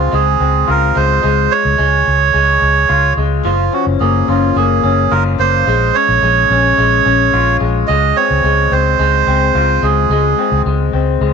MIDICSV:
0, 0, Header, 1, 4, 480
1, 0, Start_track
1, 0, Key_signature, -5, "major"
1, 0, Tempo, 554529
1, 1070, Time_signature, 4, 2, 24, 8
1, 9810, End_track
2, 0, Start_track
2, 0, Title_t, "Melodica"
2, 0, Program_c, 0, 22
2, 0, Note_on_c, 0, 65, 72
2, 120, Note_on_c, 0, 68, 85
2, 123, Note_off_c, 0, 65, 0
2, 603, Note_on_c, 0, 70, 88
2, 609, Note_off_c, 0, 68, 0
2, 835, Note_on_c, 0, 72, 94
2, 844, Note_off_c, 0, 70, 0
2, 1310, Note_on_c, 0, 73, 113
2, 1326, Note_off_c, 0, 72, 0
2, 2713, Note_off_c, 0, 73, 0
2, 2983, Note_on_c, 0, 65, 77
2, 3230, Note_on_c, 0, 66, 76
2, 3232, Note_off_c, 0, 65, 0
2, 3337, Note_off_c, 0, 66, 0
2, 3464, Note_on_c, 0, 68, 76
2, 3708, Note_on_c, 0, 65, 71
2, 3713, Note_off_c, 0, 68, 0
2, 3949, Note_on_c, 0, 68, 82
2, 3954, Note_off_c, 0, 65, 0
2, 4424, Note_on_c, 0, 70, 89
2, 4442, Note_off_c, 0, 68, 0
2, 4533, Note_off_c, 0, 70, 0
2, 4668, Note_on_c, 0, 72, 96
2, 5148, Note_on_c, 0, 73, 117
2, 5162, Note_off_c, 0, 72, 0
2, 6553, Note_off_c, 0, 73, 0
2, 6816, Note_on_c, 0, 75, 100
2, 7067, Note_on_c, 0, 73, 99
2, 7069, Note_off_c, 0, 75, 0
2, 7551, Note_on_c, 0, 72, 91
2, 7561, Note_off_c, 0, 73, 0
2, 8511, Note_on_c, 0, 68, 77
2, 8538, Note_off_c, 0, 72, 0
2, 9195, Note_off_c, 0, 68, 0
2, 9810, End_track
3, 0, Start_track
3, 0, Title_t, "Clean electric guitar"
3, 0, Program_c, 1, 27
3, 0, Note_on_c, 1, 56, 51
3, 0, Note_on_c, 1, 60, 50
3, 0, Note_on_c, 1, 65, 56
3, 97, Note_off_c, 1, 56, 0
3, 107, Note_on_c, 1, 56, 55
3, 338, Note_off_c, 1, 60, 0
3, 349, Note_on_c, 1, 60, 54
3, 582, Note_off_c, 1, 65, 0
3, 586, Note_on_c, 1, 65, 57
3, 815, Note_off_c, 1, 56, 0
3, 825, Note_on_c, 1, 56, 51
3, 1056, Note_off_c, 1, 56, 0
3, 1066, Note_on_c, 1, 56, 67
3, 1308, Note_off_c, 1, 60, 0
3, 1533, Note_off_c, 1, 56, 0
3, 1544, Note_on_c, 1, 56, 56
3, 2015, Note_off_c, 1, 56, 0
3, 2026, Note_on_c, 1, 56, 57
3, 2499, Note_off_c, 1, 65, 0
3, 2503, Note_on_c, 1, 65, 58
3, 2741, Note_off_c, 1, 56, 0
3, 2752, Note_on_c, 1, 56, 53
3, 2985, Note_on_c, 1, 53, 70
3, 3037, Note_off_c, 1, 56, 0
3, 3226, Note_on_c, 1, 61, 46
3, 3469, Note_on_c, 1, 58, 55
3, 3705, Note_off_c, 1, 61, 0
3, 3708, Note_on_c, 1, 61, 53
3, 3948, Note_off_c, 1, 58, 0
3, 3952, Note_on_c, 1, 58, 60
3, 4182, Note_off_c, 1, 61, 0
3, 4186, Note_on_c, 1, 61, 55
3, 4425, Note_off_c, 1, 65, 0
3, 4428, Note_on_c, 1, 65, 65
3, 4665, Note_off_c, 1, 58, 0
3, 4668, Note_on_c, 1, 58, 50
3, 4907, Note_off_c, 1, 58, 0
3, 4911, Note_on_c, 1, 56, 71
3, 5147, Note_off_c, 1, 61, 0
3, 5150, Note_on_c, 1, 61, 50
3, 5386, Note_off_c, 1, 56, 0
3, 5389, Note_on_c, 1, 56, 55
3, 5630, Note_off_c, 1, 61, 0
3, 5633, Note_on_c, 1, 61, 52
3, 5864, Note_off_c, 1, 56, 0
3, 5867, Note_on_c, 1, 56, 57
3, 6014, Note_off_c, 1, 53, 0
3, 6100, Note_off_c, 1, 61, 0
3, 6103, Note_on_c, 1, 61, 52
3, 6346, Note_off_c, 1, 65, 0
3, 6350, Note_on_c, 1, 65, 56
3, 6578, Note_off_c, 1, 56, 0
3, 6582, Note_on_c, 1, 56, 51
3, 6821, Note_off_c, 1, 56, 0
3, 6825, Note_on_c, 1, 56, 68
3, 7065, Note_off_c, 1, 61, 0
3, 7069, Note_on_c, 1, 60, 52
3, 7297, Note_off_c, 1, 56, 0
3, 7308, Note_on_c, 1, 56, 52
3, 7536, Note_off_c, 1, 60, 0
3, 7547, Note_on_c, 1, 60, 50
3, 7776, Note_off_c, 1, 56, 0
3, 7786, Note_on_c, 1, 56, 59
3, 8017, Note_off_c, 1, 60, 0
3, 8027, Note_on_c, 1, 60, 57
3, 8264, Note_off_c, 1, 65, 0
3, 8268, Note_on_c, 1, 65, 59
3, 8495, Note_off_c, 1, 56, 0
3, 8506, Note_on_c, 1, 56, 53
3, 8739, Note_off_c, 1, 56, 0
3, 8749, Note_on_c, 1, 56, 67
3, 8979, Note_off_c, 1, 60, 0
3, 8990, Note_on_c, 1, 60, 51
3, 9219, Note_off_c, 1, 56, 0
3, 9229, Note_on_c, 1, 56, 52
3, 9454, Note_off_c, 1, 60, 0
3, 9464, Note_on_c, 1, 60, 52
3, 9697, Note_off_c, 1, 56, 0
3, 9708, Note_on_c, 1, 56, 56
3, 9810, Note_off_c, 1, 56, 0
3, 9810, Note_off_c, 1, 60, 0
3, 9810, Note_off_c, 1, 65, 0
3, 9810, End_track
4, 0, Start_track
4, 0, Title_t, "Fingered electric bass"
4, 0, Program_c, 2, 33
4, 112, Note_on_c, 2, 37, 86
4, 308, Note_off_c, 2, 37, 0
4, 347, Note_on_c, 2, 37, 80
4, 545, Note_off_c, 2, 37, 0
4, 593, Note_on_c, 2, 37, 78
4, 789, Note_off_c, 2, 37, 0
4, 834, Note_on_c, 2, 37, 85
4, 1029, Note_off_c, 2, 37, 0
4, 1074, Note_on_c, 2, 37, 82
4, 1269, Note_off_c, 2, 37, 0
4, 1429, Note_on_c, 2, 37, 76
4, 1527, Note_off_c, 2, 37, 0
4, 1550, Note_on_c, 2, 37, 91
4, 1746, Note_off_c, 2, 37, 0
4, 1796, Note_on_c, 2, 37, 78
4, 1990, Note_off_c, 2, 37, 0
4, 2028, Note_on_c, 2, 37, 85
4, 2225, Note_off_c, 2, 37, 0
4, 2266, Note_on_c, 2, 37, 74
4, 2464, Note_off_c, 2, 37, 0
4, 2508, Note_on_c, 2, 37, 85
4, 2705, Note_off_c, 2, 37, 0
4, 2745, Note_on_c, 2, 37, 78
4, 2943, Note_off_c, 2, 37, 0
4, 2985, Note_on_c, 2, 30, 94
4, 3183, Note_off_c, 2, 30, 0
4, 3347, Note_on_c, 2, 30, 84
4, 3445, Note_off_c, 2, 30, 0
4, 3467, Note_on_c, 2, 30, 96
4, 3664, Note_off_c, 2, 30, 0
4, 3707, Note_on_c, 2, 30, 86
4, 3904, Note_off_c, 2, 30, 0
4, 3948, Note_on_c, 2, 30, 86
4, 4144, Note_off_c, 2, 30, 0
4, 4188, Note_on_c, 2, 30, 94
4, 4384, Note_off_c, 2, 30, 0
4, 4430, Note_on_c, 2, 30, 94
4, 4625, Note_off_c, 2, 30, 0
4, 4668, Note_on_c, 2, 30, 80
4, 4864, Note_off_c, 2, 30, 0
4, 4911, Note_on_c, 2, 34, 85
4, 5106, Note_off_c, 2, 34, 0
4, 5267, Note_on_c, 2, 34, 86
4, 5365, Note_off_c, 2, 34, 0
4, 5389, Note_on_c, 2, 34, 91
4, 5585, Note_off_c, 2, 34, 0
4, 5629, Note_on_c, 2, 34, 91
4, 5825, Note_off_c, 2, 34, 0
4, 5871, Note_on_c, 2, 34, 88
4, 6066, Note_off_c, 2, 34, 0
4, 6111, Note_on_c, 2, 34, 82
4, 6306, Note_off_c, 2, 34, 0
4, 6349, Note_on_c, 2, 34, 81
4, 6545, Note_off_c, 2, 34, 0
4, 6587, Note_on_c, 2, 34, 87
4, 6784, Note_off_c, 2, 34, 0
4, 6832, Note_on_c, 2, 37, 84
4, 7027, Note_off_c, 2, 37, 0
4, 7189, Note_on_c, 2, 37, 78
4, 7287, Note_off_c, 2, 37, 0
4, 7306, Note_on_c, 2, 37, 90
4, 7503, Note_off_c, 2, 37, 0
4, 7544, Note_on_c, 2, 37, 90
4, 7742, Note_off_c, 2, 37, 0
4, 7783, Note_on_c, 2, 37, 78
4, 7981, Note_off_c, 2, 37, 0
4, 8024, Note_on_c, 2, 37, 75
4, 8222, Note_off_c, 2, 37, 0
4, 8265, Note_on_c, 2, 37, 78
4, 8463, Note_off_c, 2, 37, 0
4, 8505, Note_on_c, 2, 37, 84
4, 8703, Note_off_c, 2, 37, 0
4, 8739, Note_on_c, 2, 37, 90
4, 8939, Note_off_c, 2, 37, 0
4, 9104, Note_on_c, 2, 37, 76
4, 9204, Note_off_c, 2, 37, 0
4, 9223, Note_on_c, 2, 37, 87
4, 9422, Note_off_c, 2, 37, 0
4, 9464, Note_on_c, 2, 37, 75
4, 9662, Note_off_c, 2, 37, 0
4, 9704, Note_on_c, 2, 37, 90
4, 9810, Note_off_c, 2, 37, 0
4, 9810, End_track
0, 0, End_of_file